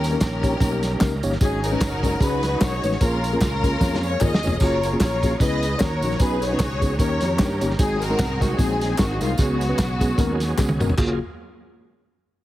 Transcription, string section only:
Already playing: C#4 G4 A#4
0.22 C#4 G4 A#4
1.42 C#4 D#4 G#4
1.64 C#4 F#4 A#4
2.22 D#4 F#4 B4
2.61 F#4 C#5
3.02 C#4 F4 A#4
3.41 C#4 F4 A#4
4.05 C#5
4.22 G#4 D#5
4.62 F4 A#4 C#5
5.01 F4 A#4 C#5
5.41 G#4 B4 D#5
5.81 F#4 A#4 C#5
6.20 D#4 G#4 B4
6.42 F#4 G#4 C#5
7.00 G4 A#4 C#5
7.79 C4 D#4 G#4
8.02 D#4 F#4 A#4
8.42 F#4
8.59 C4 D#4 G#4
8.99 F#4
9.22 F4
9.39 B3 F#4

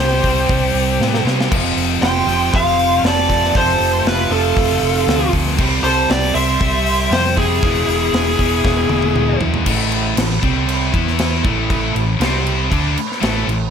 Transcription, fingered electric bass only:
0.00 C2
0.24 C2
0.49 C2
0.74 C2
0.99 A2
1.25 C3
1.51 F1
1.76 F1
2.01 F1
2.26 F1
2.54 F1
3.03 F1
3.55 F1
3.80 F1
4.05 F1
4.30 F1
4.57 F1
4.81 F1
5.07 D2
5.33 D2
5.59 C2
5.83 C2
6.09 C2
6.35 C2
6.61 C2
7.11 F2
7.63 E1
7.87 E1
8.13 E1
8.39 E1
8.65 E1
8.89 E1
9.14 D2
9.41 E2
9.66 A1
10.17 A1
10.43 C2
10.94 E2
11.45 A1
11.95 A1
12.20 C2
12.72 D2
13.22 A1
13.47 A1

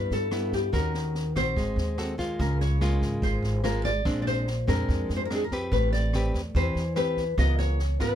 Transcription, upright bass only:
0.11 G2
0.73 D#2
1.36 A#1
1.57 G#1
1.76 D#2
2.40 C#2
3.01 G#1
3.22 G#1
3.42 G#1
4.05 A#1
4.68 F2
4.89 F2
5.09 F2
5.72 A1
6.34 E2
6.55 E2
6.75 E2
7.38 C#2
8.00 G#1

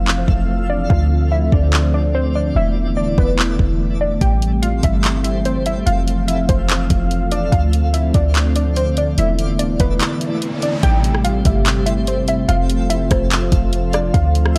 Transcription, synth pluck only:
0.70 D5
0.90 F5
1.32 E5
1.52 D5
1.94 D5
2.15 C5
2.35 D5
2.56 E5
2.97 D5
3.18 B4
4.01 D5
4.21 G5
4.62 F5
4.84 E5
5.24 E5
5.45 C5
5.66 E5
5.86 F5
6.28 E5
6.49 C5
7.32 D5
7.52 F5
7.94 E5
8.15 D5
8.56 D5
8.77 C5
8.98 D5
9.19 E5
9.59 D5
9.80 B4
10.63 D5
10.83 G5
11.24 F5
11.46 E5
11.86 E5
12.08 C5
12.28 E5
12.49 F5
12.90 E5
13.11 C5
13.94 D5
14.14 F5

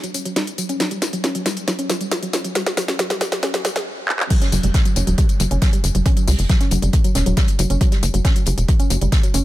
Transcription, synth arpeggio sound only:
0.03 F#3
0.14 C#4
0.25 F#3
0.36 G3
0.58 F#3
0.69 C#4
0.80 F#3
0.91 G3
1.13 F#3
1.24 C#4
1.35 F#3
1.46 G3
1.68 F#3
1.79 C#4
1.90 F#3
2.01 G3
2.23 F#3
2.33 C#4
2.44 F#3
2.55 G3
2.77 F#3
2.88 C#4
2.99 F#3
3.10 G3
3.32 F#3
3.43 C#4
3.54 F#3
3.65 G3
4.30 F#3
4.42 C#4
4.52 F#3
4.63 G3
4.85 F#3
4.96 C#4
5.07 F#3
5.18 G3
5.40 F#3
5.51 C#4
5.62 F#3
5.73 G3
5.95 F#3
6.06 C#4
6.17 F#3
6.28 G3
6.49 F#3
6.61 C#4
6.71 F#3
6.82 G3
7.04 F#3
7.15 C#4
7.26 F#3
7.37 G3
7.59 F#3
7.70 C#4
7.81 F#3
7.92 G3
8.14 F#3
8.25 C#4
8.36 F#3
8.47 G3
8.68 F#3
8.80 C#4
8.90 F#3
9.01 G3
9.23 F#3
9.34 C#4

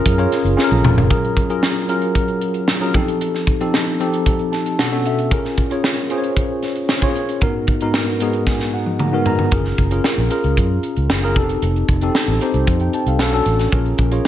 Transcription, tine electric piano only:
Already playing: C#4 F4 G#4 A#4
0.18 C#4 F4 G#4 C#5
0.57 C#4 F4 G#4 A4
0.64 A#4
1.09 F#3 C#4 F4 G#4 A#4
1.49 F#3 C#4 F4 G#4 A#4
1.88 F#3 C#4 F4 G#4 A#4
2.80 F#3 C#4 F4 G#4 A#4
2.94 F3 C4 D#4 G4 A4
3.60 F3 C4 D#4 G4 A4
3.99 F3 C4 D#4 G4 A4
4.52 A5
4.78 B2 C#4 D4 F#4 A4 F#5
4.92 B2 C#4 D4 F#4 A4
5.07 E5
5.31 C#4 F4 G#4 A#4
5.70 C#4 F4 G#4 C#5
6.11 C#4 F4 G#4 C5
6.18 C#5
7.02 C#4 F4 G#4 C#5
7.42 G#2 B3 D#4 F#4 A#4
7.81 G#2 B3 D#4 F#4 A#4
8.21 G#2 B3 D#4 F#4 G#4 D#5
8.48 G#5
8.74 F#5
9.00 A#5
9.12 G#2 B3 D#4 F#4 A#4
9.27 A#5
9.52 C#4 F4 G#4 A#4
9.91 C#4 F4 G#4 A#4
10.30 C#4 F4 G#4 A#4
11.23 C#4 F4 G#4 A#4
11.36 C4 D#4 G4 A4
12.02 C4 D#4 G4 A4
12.41 C4 D#4 G4 C5
12.81 G5
12.94 C5 A5
13.08 A4 F5
13.20 C#4 D4 F#4 A4
13.33 C#4 D4 F#4 A4
13.72 C#4 F4 G#4 A#4
14.11 C#4 F4 G#4 C#5

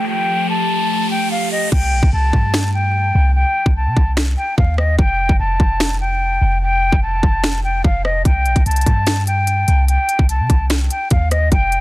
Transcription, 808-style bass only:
1.72 C2
1.92 A#1
2.03 C2
2.13 C2
2.33 G2
3.15 C2
3.66 C2
3.86 C3
3.97 C2
4.58 D#2
4.99 F1
5.29 F1
5.39 F1
5.60 F1
6.41 F1
6.92 F1
7.23 F1
7.84 F1
8.25 C2
8.46 A#1
8.56 C2
8.66 C2
8.86 G2
9.68 C2
10.19 C2
10.39 C3
10.50 C2
11.11 D#2
11.52 F1

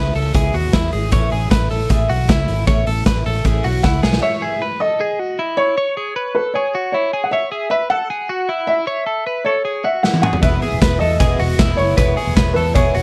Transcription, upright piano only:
3.83 F#5
4.22 E5
4.80 D#5
5.57 C#5
6.35 B4
6.54 C#5
6.92 C#5
7.24 F#5
7.31 E5
7.70 E5
7.90 F#5
8.67 E5
9.45 C#5
9.84 E5
10.03 F#5
10.22 F#5
10.41 E5
10.99 D#5
11.77 C#5
12.54 B4
12.74 C#5

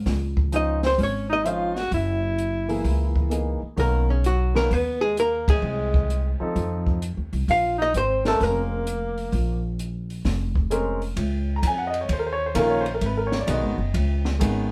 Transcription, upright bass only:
0.06 C#2
0.98 G#1
1.91 F#1
2.84 C#2
3.62 muted upright bass stroke
3.77 B1
4.71 D#2
5.62 C2
6.40 muted upright bass stroke
6.56 F2
7.17 D#2
7.33 C2
7.48 A#1
7.94 G#1
8.40 F1
9.32 A#1
10.25 F1
11.16 C#2
11.63 F2
12.09 D#2
12.55 A#1
13.01 G#1
13.47 B1
13.63 G#1
13.78 F#1
13.94 C#2
14.40 G#1

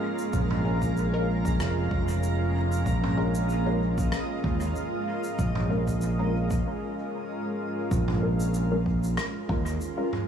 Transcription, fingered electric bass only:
0.33 A#1
1.60 F1
1.91 F1
2.86 A#1
4.44 D#2
5.39 A#1
7.91 A#1
9.49 D#2

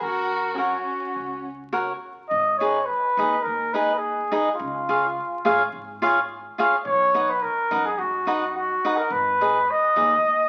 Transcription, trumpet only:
0.01 A#4
0.56 F#4
2.29 D#5
2.58 C#5
2.85 B4
3.42 A#4
3.73 B4
3.98 G#4
4.55 F4
6.85 C#5
7.30 B4
7.42 A#4
7.86 G#4
7.98 F#4
8.57 F#4
8.97 A#4
9.12 B4
9.70 D#5

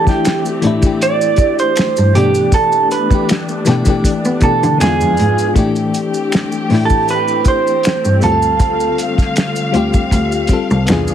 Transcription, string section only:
Already playing: A3 C4 G4
2.14 A3 B3 D4
4.80 E3 F4 G#4
5.56 A3 C4 G4
8.21 D3 F5
10.88 E3 D4 G#4

